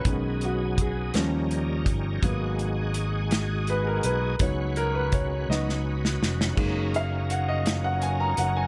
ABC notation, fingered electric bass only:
X:1
M:6/8
L:1/8
Q:3/8=55
K:F#
V:1 name="Fingered electric bass" clef=bass
B,,,3 D,,2 =G,,, | G,,,4- G,,, B,,, | C,,3 C,,2 E,,, | z4 z F,,, |]